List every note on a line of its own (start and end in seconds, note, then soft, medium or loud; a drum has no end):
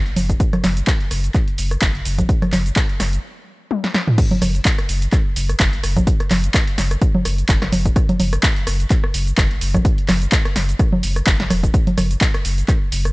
0.00 0.11 F#1 medium
0.06 closed hi-hat soft
0.16 0.35 F#1 medium
0.16 open hi-hat loud
0.16 low conga medium
0.16 shaker medium
0.29 kick medium
0.29 closed hi-hat medium
0.29 shaker soft
0.40 kick loud
0.40 closed hi-hat medium
0.40 shaker soft
0.53 cross-stick medium
0.53 closed hi-hat soft
0.53 low conga medium
0.64 0.82 F#1 loud
0.64 snare medium
0.64 open hi-hat loud
0.64 low conga medium
0.64 shaker medium
0.77 closed hi-hat medium
0.77 shaker soft
0.87 kick loud
0.87 clap loud
0.87 closed hi-hat medium
0.87 shaker soft
1.00 closed hi-hat soft
1.11 1.29 F#1 medium
1.11 cross-stick soft
1.11 open hi-hat loud
1.11 shaker medium
1.24 closed hi-hat medium
1.24 shaker soft
1.34 kick loud
1.34 clap soft
1.34 closed hi-hat soft
1.34 shaker soft
1.48 closed hi-hat soft
1.58 1.76 F#1 medium
1.58 open hi-hat loud
1.58 shaker medium
1.71 cross-stick medium
1.71 closed hi-hat medium
1.71 shaker soft
1.82 2.00 F#1 medium
1.82 kick loud
1.82 clap loud
1.82 closed hi-hat medium
1.82 shaker soft
1.95 closed hi-hat soft
2.05 2.24 F#1 loud
2.05 open hi-hat loud
2.05 shaker medium
2.18 kick medium
2.18 closed hi-hat medium
2.18 low conga medium
2.18 shaker soft
2.29 kick loud
2.29 closed hi-hat medium
2.29 shaker soft
2.42 cross-stick medium
2.42 closed hi-hat soft
2.42 low conga medium
2.53 2.71 F#1 medium
2.53 snare medium
2.53 clap soft
2.53 open hi-hat loud
2.53 low conga medium
2.53 shaker medium
2.66 closed hi-hat medium
2.66 shaker soft
2.76 kick loud
2.76 clap loud
2.76 closed hi-hat medium
2.76 shaker soft
2.89 closed hi-hat soft
3.00 3.18 F#1 medium
3.00 cross-stick soft
3.00 snare medium
3.00 open hi-hat loud
3.00 shaker medium
3.13 closed hi-hat medium
3.13 shaker soft
3.71 high tom medium
3.84 snare medium
3.94 snare medium
4.08 mid tom medium
4.18 kick loud
4.18 closed hi-hat medium
4.18 crash loud
4.18 shaker soft
4.31 closed hi-hat soft
4.31 low conga medium
4.42 4.60 F#1 loud
4.42 cross-stick medium
4.42 open hi-hat loud
4.42 low conga medium
4.42 shaker medium
4.55 closed hi-hat medium
4.55 shaker soft
4.65 kick loud
4.65 clap loud
4.65 closed hi-hat medium
4.65 shaker soft
4.78 cross-stick medium
4.78 closed hi-hat soft
4.89 5.07 F#1 medium
4.89 open hi-hat loud
4.89 shaker medium
5.02 closed hi-hat medium
5.02 shaker soft
5.13 kick loud
5.13 cross-stick medium
5.13 clap soft
5.13 closed hi-hat medium
5.13 shaker soft
5.36 5.54 F#1 medium
5.36 open hi-hat loud
5.36 shaker medium
5.49 cross-stick medium
5.49 closed hi-hat medium
5.49 shaker soft
5.60 5.78 F#1 medium
5.60 kick loud
5.60 clap loud
5.60 closed hi-hat medium
5.60 shaker soft
5.73 closed hi-hat soft
5.83 6.01 F#1 loud
5.83 cross-stick medium
5.83 open hi-hat loud
5.83 shaker medium
5.96 kick medium
5.96 closed hi-hat medium
5.96 low conga loud
5.96 shaker soft
6.07 kick loud
6.07 closed hi-hat medium
6.07 shaker soft
6.20 cross-stick medium
6.20 closed hi-hat soft
6.31 6.49 F#1 loud
6.31 snare medium
6.31 clap soft
6.31 open hi-hat loud
6.31 low conga loud
6.31 shaker medium
6.44 closed hi-hat medium
6.44 shaker soft
6.54 kick loud
6.54 cross-stick medium
6.54 clap loud
6.54 closed hi-hat medium
6.54 shaker soft
6.67 closed hi-hat soft
6.78 6.96 F#1 medium
6.78 snare medium
6.78 open hi-hat loud
6.78 shaker medium
6.91 cross-stick medium
6.91 closed hi-hat medium
6.91 shaker soft
7.02 kick loud
7.02 closed hi-hat medium
7.02 shaker soft
7.15 low conga loud
7.25 7.43 F#1 medium
7.25 cross-stick medium
7.25 open hi-hat loud
7.25 shaker medium
7.38 closed hi-hat medium
7.38 shaker soft
7.49 7.67 F#1 medium
7.49 kick loud
7.49 clap loud
7.49 closed hi-hat medium
7.49 shaker soft
7.62 cross-stick medium
7.62 snare medium
7.62 closed hi-hat soft
7.72 7.90 F#1 loud
7.72 open hi-hat loud
7.72 low conga medium
7.72 shaker medium
7.85 kick medium
7.85 closed hi-hat medium
7.85 shaker soft
7.96 kick loud
7.96 cross-stick medium
7.96 closed hi-hat medium
7.96 shaker soft
8.09 closed hi-hat soft
8.09 low conga medium
8.20 8.38 F#1 loud
8.20 open hi-hat loud
8.20 low conga medium
8.20 shaker medium
8.33 cross-stick medium
8.33 closed hi-hat medium
8.33 shaker soft
8.43 kick loud
8.43 clap loud
8.43 closed hi-hat medium
8.43 shaker soft
8.56 closed hi-hat soft
8.67 8.85 F#1 loud
8.67 cross-stick medium
8.67 open hi-hat loud
8.67 shaker medium
8.80 closed hi-hat medium
8.80 shaker soft
8.90 kick loud
8.90 clap soft
8.90 closed hi-hat medium
8.90 shaker soft
9.04 cross-stick medium
9.14 9.32 F#1 medium
9.14 open hi-hat loud
9.14 shaker medium
9.27 closed hi-hat medium
9.27 shaker soft
9.38 9.56 F#1 medium
9.38 kick loud
9.38 cross-stick medium
9.38 clap loud
9.38 closed hi-hat medium
9.38 shaker soft
9.51 closed hi-hat soft
9.61 9.79 F#1 loud
9.61 open hi-hat loud
9.61 shaker medium
9.74 kick medium
9.74 cross-stick medium
9.74 closed hi-hat medium
9.74 low conga loud
9.74 shaker soft
9.85 kick loud
9.85 closed hi-hat medium
9.85 shaker soft
9.98 closed hi-hat soft
10.08 10.27 F#1 loud
10.08 cross-stick medium
10.08 snare medium
10.08 clap soft
10.08 open hi-hat loud
10.08 low conga medium
10.08 shaker medium
10.22 closed hi-hat medium
10.22 shaker soft
10.32 kick loud
10.32 clap loud
10.32 closed hi-hat medium
10.32 shaker soft
10.45 cross-stick medium
10.45 closed hi-hat soft
10.56 10.74 F#1 medium
10.56 snare medium
10.56 open hi-hat loud
10.56 shaker medium
10.69 closed hi-hat medium
10.69 shaker soft
10.79 kick loud
10.79 cross-stick medium
10.79 closed hi-hat medium
10.79 shaker soft
10.93 low conga medium
11.03 11.21 F#1 medium
11.03 open hi-hat loud
11.03 shaker medium
11.16 cross-stick medium
11.16 closed hi-hat soft
11.16 shaker soft
11.27 11.45 F#1 medium
11.27 kick loud
11.27 clap loud
11.27 closed hi-hat medium
11.27 shaker soft
11.40 snare medium
11.40 closed hi-hat soft
11.50 11.68 E1 loud
11.50 cross-stick medium
11.50 open hi-hat loud
11.50 low conga medium
11.50 shaker medium
11.63 kick medium
11.63 closed hi-hat medium
11.63 shaker soft
11.74 kick loud
11.74 closed hi-hat medium
11.74 shaker soft
11.87 closed hi-hat soft
11.87 low conga medium
11.98 12.16 F#1 loud
11.98 cross-stick medium
11.98 open hi-hat loud
11.98 low conga medium
11.98 shaker medium
12.11 closed hi-hat medium
12.11 shaker soft
12.21 kick loud
12.21 clap loud
12.21 closed hi-hat medium
12.21 shaker soft
12.34 cross-stick medium
12.34 closed hi-hat soft
12.45 12.63 F#1 medium
12.45 open hi-hat loud
12.45 shaker medium
12.58 closed hi-hat medium
12.58 shaker soft
12.68 kick loud
12.68 cross-stick medium
12.68 clap soft
12.68 closed hi-hat medium
12.68 shaker soft
12.92 13.10 F#1 medium
12.92 open hi-hat loud
12.92 shaker medium
13.05 cross-stick medium
13.05 closed hi-hat soft
13.05 shaker soft